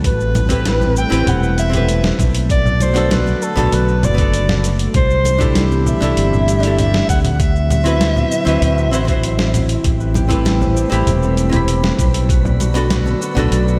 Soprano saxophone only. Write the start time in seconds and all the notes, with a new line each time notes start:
0.06 B4
0.98 G5
1.28 F#5
1.59 E5
2.51 D5
2.82 C5
3.13 B4
3.43 A4
3.74 B4
4.05 D5
4.96 C5
5.88 E5
6.79 E5
7.09 F#5
7.34 F#5
7.40 E5